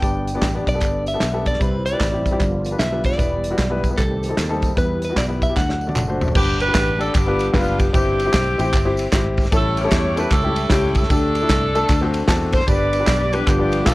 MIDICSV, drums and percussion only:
0, 0, Header, 1, 2, 480
1, 0, Start_track
1, 0, Key_signature, 1, "major"
1, 0, Tempo, 395517
1, 30, Time_signature, 4, 2, 24, 8
1, 16920, End_track
2, 0, Start_track
2, 0, Title_t, "Drums"
2, 30, Note_on_c, 9, 36, 105
2, 32, Note_on_c, 9, 42, 76
2, 44, Note_on_c, 9, 54, 67
2, 152, Note_off_c, 9, 36, 0
2, 153, Note_off_c, 9, 42, 0
2, 166, Note_off_c, 9, 54, 0
2, 334, Note_on_c, 9, 42, 64
2, 350, Note_on_c, 9, 54, 46
2, 455, Note_off_c, 9, 42, 0
2, 471, Note_off_c, 9, 54, 0
2, 509, Note_on_c, 9, 36, 88
2, 509, Note_on_c, 9, 38, 95
2, 514, Note_on_c, 9, 39, 82
2, 514, Note_on_c, 9, 54, 88
2, 515, Note_on_c, 9, 42, 92
2, 630, Note_off_c, 9, 36, 0
2, 631, Note_off_c, 9, 38, 0
2, 635, Note_off_c, 9, 39, 0
2, 635, Note_off_c, 9, 54, 0
2, 636, Note_off_c, 9, 42, 0
2, 814, Note_on_c, 9, 36, 91
2, 817, Note_on_c, 9, 42, 60
2, 827, Note_on_c, 9, 54, 57
2, 935, Note_off_c, 9, 36, 0
2, 938, Note_off_c, 9, 42, 0
2, 948, Note_off_c, 9, 54, 0
2, 977, Note_on_c, 9, 42, 78
2, 990, Note_on_c, 9, 36, 99
2, 994, Note_on_c, 9, 39, 67
2, 994, Note_on_c, 9, 54, 67
2, 1098, Note_off_c, 9, 42, 0
2, 1111, Note_off_c, 9, 36, 0
2, 1116, Note_off_c, 9, 39, 0
2, 1116, Note_off_c, 9, 54, 0
2, 1289, Note_on_c, 9, 54, 45
2, 1298, Note_on_c, 9, 42, 78
2, 1410, Note_off_c, 9, 54, 0
2, 1419, Note_off_c, 9, 42, 0
2, 1460, Note_on_c, 9, 38, 111
2, 1463, Note_on_c, 9, 42, 96
2, 1476, Note_on_c, 9, 39, 83
2, 1476, Note_on_c, 9, 54, 84
2, 1581, Note_off_c, 9, 38, 0
2, 1584, Note_off_c, 9, 42, 0
2, 1597, Note_off_c, 9, 39, 0
2, 1597, Note_off_c, 9, 54, 0
2, 1769, Note_on_c, 9, 42, 72
2, 1776, Note_on_c, 9, 36, 83
2, 1785, Note_on_c, 9, 54, 53
2, 1864, Note_on_c, 9, 38, 32
2, 1891, Note_off_c, 9, 42, 0
2, 1897, Note_off_c, 9, 36, 0
2, 1906, Note_off_c, 9, 54, 0
2, 1950, Note_on_c, 9, 42, 73
2, 1952, Note_on_c, 9, 36, 112
2, 1962, Note_on_c, 9, 54, 64
2, 1986, Note_off_c, 9, 38, 0
2, 2072, Note_off_c, 9, 42, 0
2, 2074, Note_off_c, 9, 36, 0
2, 2083, Note_off_c, 9, 54, 0
2, 2261, Note_on_c, 9, 42, 64
2, 2269, Note_on_c, 9, 54, 47
2, 2382, Note_off_c, 9, 42, 0
2, 2391, Note_off_c, 9, 54, 0
2, 2433, Note_on_c, 9, 36, 95
2, 2433, Note_on_c, 9, 39, 82
2, 2433, Note_on_c, 9, 54, 86
2, 2437, Note_on_c, 9, 38, 94
2, 2442, Note_on_c, 9, 42, 87
2, 2554, Note_off_c, 9, 36, 0
2, 2554, Note_off_c, 9, 39, 0
2, 2554, Note_off_c, 9, 54, 0
2, 2558, Note_off_c, 9, 38, 0
2, 2563, Note_off_c, 9, 42, 0
2, 2740, Note_on_c, 9, 36, 81
2, 2746, Note_on_c, 9, 54, 57
2, 2748, Note_on_c, 9, 42, 62
2, 2861, Note_off_c, 9, 36, 0
2, 2867, Note_off_c, 9, 54, 0
2, 2869, Note_off_c, 9, 42, 0
2, 2911, Note_on_c, 9, 42, 82
2, 2916, Note_on_c, 9, 36, 98
2, 2919, Note_on_c, 9, 39, 66
2, 2919, Note_on_c, 9, 54, 66
2, 3033, Note_off_c, 9, 42, 0
2, 3037, Note_off_c, 9, 36, 0
2, 3040, Note_off_c, 9, 39, 0
2, 3040, Note_off_c, 9, 54, 0
2, 3209, Note_on_c, 9, 54, 48
2, 3224, Note_on_c, 9, 42, 75
2, 3330, Note_off_c, 9, 54, 0
2, 3345, Note_off_c, 9, 42, 0
2, 3387, Note_on_c, 9, 38, 115
2, 3390, Note_on_c, 9, 42, 91
2, 3402, Note_on_c, 9, 39, 84
2, 3402, Note_on_c, 9, 54, 83
2, 3508, Note_off_c, 9, 38, 0
2, 3512, Note_off_c, 9, 42, 0
2, 3524, Note_off_c, 9, 39, 0
2, 3524, Note_off_c, 9, 54, 0
2, 3686, Note_on_c, 9, 42, 75
2, 3694, Note_on_c, 9, 36, 91
2, 3701, Note_on_c, 9, 54, 56
2, 3783, Note_on_c, 9, 38, 31
2, 3807, Note_off_c, 9, 42, 0
2, 3815, Note_off_c, 9, 36, 0
2, 3822, Note_off_c, 9, 54, 0
2, 3867, Note_on_c, 9, 42, 75
2, 3869, Note_on_c, 9, 36, 101
2, 3877, Note_on_c, 9, 54, 66
2, 3904, Note_off_c, 9, 38, 0
2, 3988, Note_off_c, 9, 42, 0
2, 3991, Note_off_c, 9, 36, 0
2, 3999, Note_off_c, 9, 54, 0
2, 4171, Note_on_c, 9, 42, 68
2, 4188, Note_on_c, 9, 54, 48
2, 4293, Note_off_c, 9, 42, 0
2, 4309, Note_off_c, 9, 54, 0
2, 4349, Note_on_c, 9, 38, 99
2, 4349, Note_on_c, 9, 39, 86
2, 4349, Note_on_c, 9, 54, 86
2, 4350, Note_on_c, 9, 36, 88
2, 4354, Note_on_c, 9, 42, 89
2, 4470, Note_off_c, 9, 39, 0
2, 4470, Note_off_c, 9, 54, 0
2, 4471, Note_off_c, 9, 36, 0
2, 4471, Note_off_c, 9, 38, 0
2, 4476, Note_off_c, 9, 42, 0
2, 4657, Note_on_c, 9, 36, 81
2, 4661, Note_on_c, 9, 42, 59
2, 4668, Note_on_c, 9, 54, 54
2, 4779, Note_off_c, 9, 36, 0
2, 4782, Note_off_c, 9, 42, 0
2, 4789, Note_off_c, 9, 54, 0
2, 4823, Note_on_c, 9, 42, 81
2, 4832, Note_on_c, 9, 36, 99
2, 4836, Note_on_c, 9, 39, 74
2, 4836, Note_on_c, 9, 54, 70
2, 4945, Note_off_c, 9, 42, 0
2, 4954, Note_off_c, 9, 36, 0
2, 4957, Note_off_c, 9, 39, 0
2, 4957, Note_off_c, 9, 54, 0
2, 5133, Note_on_c, 9, 54, 49
2, 5143, Note_on_c, 9, 42, 71
2, 5254, Note_off_c, 9, 54, 0
2, 5264, Note_off_c, 9, 42, 0
2, 5308, Note_on_c, 9, 38, 115
2, 5311, Note_on_c, 9, 42, 96
2, 5322, Note_on_c, 9, 39, 93
2, 5322, Note_on_c, 9, 54, 83
2, 5429, Note_off_c, 9, 38, 0
2, 5432, Note_off_c, 9, 42, 0
2, 5444, Note_off_c, 9, 39, 0
2, 5444, Note_off_c, 9, 54, 0
2, 5610, Note_on_c, 9, 42, 72
2, 5617, Note_on_c, 9, 36, 87
2, 5627, Note_on_c, 9, 54, 54
2, 5732, Note_off_c, 9, 42, 0
2, 5738, Note_off_c, 9, 36, 0
2, 5749, Note_off_c, 9, 54, 0
2, 5790, Note_on_c, 9, 42, 84
2, 5791, Note_on_c, 9, 36, 109
2, 5804, Note_on_c, 9, 54, 64
2, 5911, Note_off_c, 9, 42, 0
2, 5912, Note_off_c, 9, 36, 0
2, 5925, Note_off_c, 9, 54, 0
2, 6092, Note_on_c, 9, 42, 66
2, 6112, Note_on_c, 9, 54, 47
2, 6214, Note_off_c, 9, 42, 0
2, 6233, Note_off_c, 9, 54, 0
2, 6267, Note_on_c, 9, 38, 96
2, 6270, Note_on_c, 9, 36, 88
2, 6272, Note_on_c, 9, 42, 89
2, 6280, Note_on_c, 9, 39, 84
2, 6280, Note_on_c, 9, 54, 88
2, 6388, Note_off_c, 9, 38, 0
2, 6391, Note_off_c, 9, 36, 0
2, 6394, Note_off_c, 9, 42, 0
2, 6401, Note_off_c, 9, 39, 0
2, 6401, Note_off_c, 9, 54, 0
2, 6578, Note_on_c, 9, 36, 89
2, 6581, Note_on_c, 9, 54, 55
2, 6583, Note_on_c, 9, 42, 61
2, 6699, Note_off_c, 9, 36, 0
2, 6702, Note_off_c, 9, 54, 0
2, 6704, Note_off_c, 9, 42, 0
2, 6754, Note_on_c, 9, 38, 47
2, 6755, Note_on_c, 9, 36, 94
2, 6758, Note_on_c, 9, 39, 74
2, 6758, Note_on_c, 9, 54, 66
2, 6876, Note_off_c, 9, 36, 0
2, 6876, Note_off_c, 9, 38, 0
2, 6879, Note_off_c, 9, 39, 0
2, 6879, Note_off_c, 9, 54, 0
2, 6912, Note_on_c, 9, 38, 49
2, 7033, Note_off_c, 9, 38, 0
2, 7053, Note_on_c, 9, 54, 46
2, 7148, Note_on_c, 9, 48, 68
2, 7175, Note_off_c, 9, 54, 0
2, 7232, Note_on_c, 9, 47, 78
2, 7236, Note_on_c, 9, 39, 86
2, 7236, Note_on_c, 9, 54, 86
2, 7269, Note_off_c, 9, 48, 0
2, 7353, Note_off_c, 9, 47, 0
2, 7358, Note_off_c, 9, 39, 0
2, 7358, Note_off_c, 9, 54, 0
2, 7542, Note_on_c, 9, 54, 51
2, 7544, Note_on_c, 9, 43, 90
2, 7623, Note_off_c, 9, 43, 0
2, 7623, Note_on_c, 9, 43, 77
2, 7663, Note_off_c, 9, 54, 0
2, 7709, Note_on_c, 9, 49, 102
2, 7713, Note_on_c, 9, 36, 122
2, 7727, Note_on_c, 9, 54, 74
2, 7745, Note_off_c, 9, 43, 0
2, 7830, Note_off_c, 9, 49, 0
2, 7834, Note_off_c, 9, 36, 0
2, 7848, Note_off_c, 9, 54, 0
2, 8015, Note_on_c, 9, 51, 57
2, 8031, Note_on_c, 9, 54, 55
2, 8136, Note_off_c, 9, 51, 0
2, 8152, Note_off_c, 9, 54, 0
2, 8189, Note_on_c, 9, 39, 103
2, 8189, Note_on_c, 9, 54, 95
2, 8190, Note_on_c, 9, 38, 110
2, 8192, Note_on_c, 9, 36, 100
2, 8196, Note_on_c, 9, 51, 80
2, 8310, Note_off_c, 9, 39, 0
2, 8310, Note_off_c, 9, 54, 0
2, 8312, Note_off_c, 9, 38, 0
2, 8313, Note_off_c, 9, 36, 0
2, 8317, Note_off_c, 9, 51, 0
2, 8503, Note_on_c, 9, 51, 55
2, 8505, Note_on_c, 9, 54, 63
2, 8624, Note_off_c, 9, 51, 0
2, 8627, Note_off_c, 9, 54, 0
2, 8668, Note_on_c, 9, 51, 76
2, 8677, Note_on_c, 9, 36, 114
2, 8678, Note_on_c, 9, 39, 82
2, 8678, Note_on_c, 9, 54, 84
2, 8789, Note_off_c, 9, 51, 0
2, 8798, Note_off_c, 9, 36, 0
2, 8799, Note_off_c, 9, 39, 0
2, 8799, Note_off_c, 9, 54, 0
2, 8970, Note_on_c, 9, 54, 57
2, 8987, Note_on_c, 9, 51, 69
2, 9092, Note_off_c, 9, 54, 0
2, 9108, Note_off_c, 9, 51, 0
2, 9146, Note_on_c, 9, 38, 127
2, 9149, Note_on_c, 9, 51, 83
2, 9153, Note_on_c, 9, 36, 105
2, 9161, Note_on_c, 9, 39, 96
2, 9161, Note_on_c, 9, 54, 101
2, 9267, Note_off_c, 9, 38, 0
2, 9271, Note_off_c, 9, 51, 0
2, 9274, Note_off_c, 9, 36, 0
2, 9283, Note_off_c, 9, 39, 0
2, 9283, Note_off_c, 9, 54, 0
2, 9459, Note_on_c, 9, 51, 72
2, 9462, Note_on_c, 9, 36, 98
2, 9465, Note_on_c, 9, 54, 65
2, 9580, Note_off_c, 9, 51, 0
2, 9583, Note_off_c, 9, 36, 0
2, 9586, Note_off_c, 9, 54, 0
2, 9635, Note_on_c, 9, 51, 72
2, 9637, Note_on_c, 9, 36, 122
2, 9647, Note_on_c, 9, 54, 75
2, 9757, Note_off_c, 9, 51, 0
2, 9759, Note_off_c, 9, 36, 0
2, 9768, Note_off_c, 9, 54, 0
2, 9944, Note_on_c, 9, 51, 63
2, 9949, Note_on_c, 9, 54, 54
2, 10065, Note_off_c, 9, 51, 0
2, 10071, Note_off_c, 9, 54, 0
2, 10112, Note_on_c, 9, 39, 100
2, 10112, Note_on_c, 9, 54, 98
2, 10118, Note_on_c, 9, 36, 105
2, 10118, Note_on_c, 9, 38, 110
2, 10123, Note_on_c, 9, 51, 78
2, 10233, Note_off_c, 9, 39, 0
2, 10233, Note_off_c, 9, 54, 0
2, 10239, Note_off_c, 9, 36, 0
2, 10239, Note_off_c, 9, 38, 0
2, 10244, Note_off_c, 9, 51, 0
2, 10426, Note_on_c, 9, 54, 65
2, 10429, Note_on_c, 9, 51, 60
2, 10547, Note_off_c, 9, 54, 0
2, 10551, Note_off_c, 9, 51, 0
2, 10592, Note_on_c, 9, 51, 74
2, 10601, Note_on_c, 9, 36, 110
2, 10601, Note_on_c, 9, 39, 84
2, 10601, Note_on_c, 9, 54, 80
2, 10713, Note_off_c, 9, 51, 0
2, 10722, Note_off_c, 9, 36, 0
2, 10722, Note_off_c, 9, 39, 0
2, 10722, Note_off_c, 9, 54, 0
2, 10885, Note_on_c, 9, 54, 53
2, 10907, Note_on_c, 9, 51, 73
2, 11006, Note_off_c, 9, 54, 0
2, 11029, Note_off_c, 9, 51, 0
2, 11074, Note_on_c, 9, 38, 125
2, 11075, Note_on_c, 9, 36, 100
2, 11077, Note_on_c, 9, 39, 104
2, 11077, Note_on_c, 9, 51, 83
2, 11077, Note_on_c, 9, 54, 95
2, 11195, Note_off_c, 9, 38, 0
2, 11197, Note_off_c, 9, 36, 0
2, 11198, Note_off_c, 9, 39, 0
2, 11198, Note_off_c, 9, 51, 0
2, 11198, Note_off_c, 9, 54, 0
2, 11376, Note_on_c, 9, 51, 72
2, 11382, Note_on_c, 9, 36, 97
2, 11387, Note_on_c, 9, 54, 61
2, 11388, Note_on_c, 9, 38, 40
2, 11469, Note_off_c, 9, 38, 0
2, 11469, Note_on_c, 9, 38, 34
2, 11497, Note_off_c, 9, 51, 0
2, 11504, Note_off_c, 9, 36, 0
2, 11508, Note_off_c, 9, 54, 0
2, 11554, Note_on_c, 9, 51, 76
2, 11557, Note_on_c, 9, 36, 123
2, 11561, Note_on_c, 9, 54, 71
2, 11590, Note_off_c, 9, 38, 0
2, 11675, Note_off_c, 9, 51, 0
2, 11678, Note_off_c, 9, 36, 0
2, 11682, Note_off_c, 9, 54, 0
2, 11857, Note_on_c, 9, 51, 59
2, 11870, Note_on_c, 9, 54, 53
2, 11979, Note_off_c, 9, 51, 0
2, 11991, Note_off_c, 9, 54, 0
2, 12034, Note_on_c, 9, 36, 91
2, 12034, Note_on_c, 9, 38, 106
2, 12035, Note_on_c, 9, 39, 95
2, 12035, Note_on_c, 9, 54, 98
2, 12039, Note_on_c, 9, 51, 81
2, 12155, Note_off_c, 9, 36, 0
2, 12155, Note_off_c, 9, 38, 0
2, 12156, Note_off_c, 9, 39, 0
2, 12156, Note_off_c, 9, 54, 0
2, 12161, Note_off_c, 9, 51, 0
2, 12342, Note_on_c, 9, 51, 59
2, 12349, Note_on_c, 9, 54, 62
2, 12464, Note_off_c, 9, 51, 0
2, 12470, Note_off_c, 9, 54, 0
2, 12505, Note_on_c, 9, 51, 76
2, 12514, Note_on_c, 9, 36, 107
2, 12517, Note_on_c, 9, 39, 83
2, 12517, Note_on_c, 9, 54, 77
2, 12626, Note_off_c, 9, 51, 0
2, 12635, Note_off_c, 9, 36, 0
2, 12639, Note_off_c, 9, 39, 0
2, 12639, Note_off_c, 9, 54, 0
2, 12812, Note_on_c, 9, 54, 54
2, 12816, Note_on_c, 9, 51, 68
2, 12933, Note_off_c, 9, 54, 0
2, 12937, Note_off_c, 9, 51, 0
2, 12980, Note_on_c, 9, 38, 127
2, 12983, Note_on_c, 9, 51, 84
2, 12987, Note_on_c, 9, 36, 102
2, 13003, Note_on_c, 9, 39, 91
2, 13003, Note_on_c, 9, 54, 102
2, 13101, Note_off_c, 9, 38, 0
2, 13105, Note_off_c, 9, 51, 0
2, 13109, Note_off_c, 9, 36, 0
2, 13125, Note_off_c, 9, 39, 0
2, 13125, Note_off_c, 9, 54, 0
2, 13285, Note_on_c, 9, 51, 69
2, 13296, Note_on_c, 9, 36, 103
2, 13307, Note_on_c, 9, 54, 59
2, 13387, Note_on_c, 9, 38, 37
2, 13406, Note_off_c, 9, 51, 0
2, 13418, Note_off_c, 9, 36, 0
2, 13429, Note_off_c, 9, 54, 0
2, 13470, Note_on_c, 9, 51, 73
2, 13472, Note_on_c, 9, 36, 121
2, 13480, Note_on_c, 9, 54, 76
2, 13508, Note_off_c, 9, 38, 0
2, 13592, Note_off_c, 9, 51, 0
2, 13594, Note_off_c, 9, 36, 0
2, 13602, Note_off_c, 9, 54, 0
2, 13774, Note_on_c, 9, 51, 61
2, 13790, Note_on_c, 9, 54, 55
2, 13895, Note_off_c, 9, 51, 0
2, 13911, Note_off_c, 9, 54, 0
2, 13950, Note_on_c, 9, 36, 96
2, 13950, Note_on_c, 9, 38, 110
2, 13955, Note_on_c, 9, 51, 81
2, 13956, Note_on_c, 9, 39, 106
2, 13956, Note_on_c, 9, 54, 99
2, 14071, Note_off_c, 9, 38, 0
2, 14072, Note_off_c, 9, 36, 0
2, 14077, Note_off_c, 9, 39, 0
2, 14077, Note_off_c, 9, 51, 0
2, 14077, Note_off_c, 9, 54, 0
2, 14261, Note_on_c, 9, 51, 56
2, 14265, Note_on_c, 9, 54, 63
2, 14382, Note_off_c, 9, 51, 0
2, 14387, Note_off_c, 9, 54, 0
2, 14425, Note_on_c, 9, 51, 74
2, 14432, Note_on_c, 9, 36, 109
2, 14437, Note_on_c, 9, 39, 77
2, 14437, Note_on_c, 9, 54, 79
2, 14546, Note_off_c, 9, 51, 0
2, 14554, Note_off_c, 9, 36, 0
2, 14558, Note_off_c, 9, 39, 0
2, 14558, Note_off_c, 9, 54, 0
2, 14729, Note_on_c, 9, 54, 51
2, 14731, Note_on_c, 9, 51, 68
2, 14851, Note_off_c, 9, 54, 0
2, 14853, Note_off_c, 9, 51, 0
2, 14900, Note_on_c, 9, 38, 127
2, 14903, Note_on_c, 9, 51, 80
2, 14906, Note_on_c, 9, 36, 97
2, 14921, Note_on_c, 9, 39, 104
2, 14921, Note_on_c, 9, 54, 96
2, 15021, Note_off_c, 9, 38, 0
2, 15024, Note_off_c, 9, 51, 0
2, 15027, Note_off_c, 9, 36, 0
2, 15043, Note_off_c, 9, 39, 0
2, 15043, Note_off_c, 9, 54, 0
2, 15202, Note_on_c, 9, 51, 67
2, 15214, Note_on_c, 9, 36, 103
2, 15214, Note_on_c, 9, 38, 34
2, 15221, Note_on_c, 9, 54, 62
2, 15296, Note_off_c, 9, 38, 0
2, 15296, Note_on_c, 9, 38, 37
2, 15324, Note_off_c, 9, 51, 0
2, 15335, Note_off_c, 9, 36, 0
2, 15342, Note_off_c, 9, 54, 0
2, 15385, Note_on_c, 9, 51, 74
2, 15389, Note_on_c, 9, 36, 116
2, 15394, Note_on_c, 9, 54, 73
2, 15418, Note_off_c, 9, 38, 0
2, 15507, Note_off_c, 9, 51, 0
2, 15510, Note_off_c, 9, 36, 0
2, 15515, Note_off_c, 9, 54, 0
2, 15693, Note_on_c, 9, 51, 66
2, 15701, Note_on_c, 9, 54, 53
2, 15814, Note_off_c, 9, 51, 0
2, 15822, Note_off_c, 9, 54, 0
2, 15865, Note_on_c, 9, 39, 93
2, 15865, Note_on_c, 9, 54, 92
2, 15868, Note_on_c, 9, 38, 103
2, 15870, Note_on_c, 9, 36, 99
2, 15873, Note_on_c, 9, 51, 85
2, 15986, Note_off_c, 9, 39, 0
2, 15986, Note_off_c, 9, 54, 0
2, 15989, Note_off_c, 9, 38, 0
2, 15991, Note_off_c, 9, 36, 0
2, 15995, Note_off_c, 9, 51, 0
2, 16174, Note_on_c, 9, 54, 64
2, 16181, Note_on_c, 9, 51, 61
2, 16296, Note_off_c, 9, 54, 0
2, 16302, Note_off_c, 9, 51, 0
2, 16345, Note_on_c, 9, 51, 78
2, 16351, Note_on_c, 9, 36, 113
2, 16356, Note_on_c, 9, 39, 83
2, 16356, Note_on_c, 9, 54, 75
2, 16467, Note_off_c, 9, 51, 0
2, 16473, Note_off_c, 9, 36, 0
2, 16478, Note_off_c, 9, 39, 0
2, 16478, Note_off_c, 9, 54, 0
2, 16646, Note_on_c, 9, 54, 51
2, 16657, Note_on_c, 9, 51, 71
2, 16768, Note_off_c, 9, 54, 0
2, 16778, Note_off_c, 9, 51, 0
2, 16818, Note_on_c, 9, 38, 127
2, 16822, Note_on_c, 9, 51, 86
2, 16824, Note_on_c, 9, 36, 105
2, 16829, Note_on_c, 9, 39, 93
2, 16829, Note_on_c, 9, 54, 92
2, 16920, Note_off_c, 9, 36, 0
2, 16920, Note_off_c, 9, 38, 0
2, 16920, Note_off_c, 9, 39, 0
2, 16920, Note_off_c, 9, 51, 0
2, 16920, Note_off_c, 9, 54, 0
2, 16920, End_track
0, 0, End_of_file